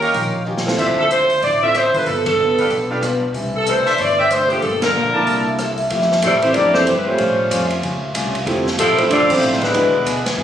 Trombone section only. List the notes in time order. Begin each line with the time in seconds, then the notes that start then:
4.81 D3 F3 A#3
6.24 C3 E3 A3
6.42 E3 A3 C4
6.57 D4
6.74 E3 A3 C4
7.07 F3 G3 A3
8.77 C3 F3 A3
8.97 F3 A3 C4
9.09 F3 A3 D4
9.30 F3 A3 C4
9.63 D3 G#3 B3